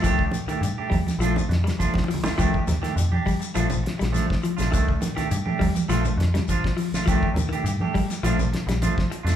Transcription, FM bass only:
X:1
M:4/4
L:1/16
Q:1/4=102
K:Cdor
V:1 name="FM bass" clef=bass
C,,2 z C,, G,, z E,, z B,,,2 F,,2 z3 B,,, | C,, z E,, z F,,2 z2 B,,, B,,, z B,,,2 z2 B,,, | C,,2 z C,, G,, z E,, z B,,,2 F,,2 z3 B,,, | C,, z E,, z G,,2 z2 B,,, B,,, z B,,,2 z2 F,, |]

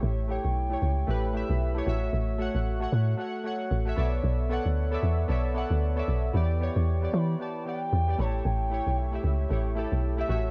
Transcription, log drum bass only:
X:1
M:4/4
L:1/16
Q:"Swing 16ths" 1/4=114
K:Amix
V:1 name="Log drum bass" clef=bass
A,,,3 B,,,3 C,,2 A,,,3 B,,,3 A,,,2 | A,,,3 A,,,3 A,,2 z4 A,,,2 B,,,2 | B,,,3 D,,3 E,,2 B,,,3 D,,3 B,,,2 | E,,3 E,,3 E,2 z4 E,,2 A,,,2 |
A,,,3 B,,,3 C,,2 A,,,3 B,,,3 A,,,2 |]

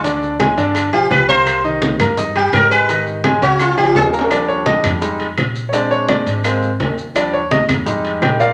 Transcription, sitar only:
X:1
M:4/4
L:1/8
Q:1/4=169
K:Eb
V:1 name="Sitar"
z4 z G =B c- | c z4 G B _c- | _c z2 _G F =G A z | z8 |
z8 | z8 |]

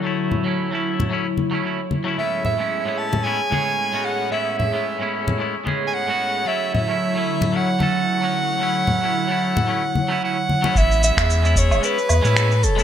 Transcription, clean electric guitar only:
X:1
M:4/4
L:1/16
Q:"Swing 16ths" 1/4=112
K:A
V:1 name="Clean electric guitar"
[F,A,CE]3 [F,A,CE]2 [F,A,CE]3 [F,A,CE] z2 [F,A,CE] [F,A,CE] z2 [F,A,CE] | [A,,G,B,CE]3 [A,,G,B,CE]2 [A,,G,B,CE]3 [A,,G,B,CE] z [A,,G,B,CG]3 [A,,G,B,CF]3 | [A,,G,B,CE]3 [A,,G,B,CE]2 [A,,G,B,CE]3 [A,,G,B,CE] z [A,,G,B,CG]3 [A,,G,B,CF]3 | [F,A,CE]3 [F,A,CE]2 [F,A,CE]3 [F,A,CE] z [F,A,CA]3 [F,A,CF]3 |
[F,A,CE]3 [F,A,CE]2 [F,A,CE]3 [F,A,CE] z2 [F,A,CE] [F,A,CE] z2 [F,A,CE] | [G,B,CE]3 [G,B,CE]2 [G,B,CE]3 [G,B,CE] z2 [G,B,CE] [G,B,CE] z2 [G,B,CE] |]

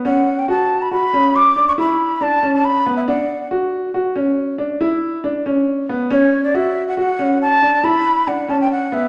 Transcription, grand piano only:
X:1
M:7/4
L:1/8
Q:1/4=139
K:Bm
V:1 name="Grand piano"
C2 F2 F C2 D E2 D C2 B, | D2 F2 F C2 D E2 D C2 B, | C2 F2 F C2 D E2 D C2 B, |]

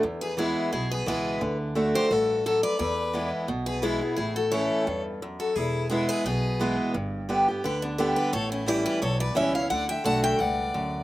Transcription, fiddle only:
X:1
M:4/4
L:1/16
Q:1/4=174
K:Edor
V:1 name="Fiddle"
z2 ^G2 E4 E2 G2 G4 | z6 G2 F4 F2 B2 | B6 z4 ^G2 E4 | E2 F2 A6 z4 F2 |
E4 E2 ^G2 G6 z2 | z8 G2 B,2 D2 G2 | A2 C2 E2 G2 A2 B2 c2 c2 | d2 e2 f2 e2 d6- d z |]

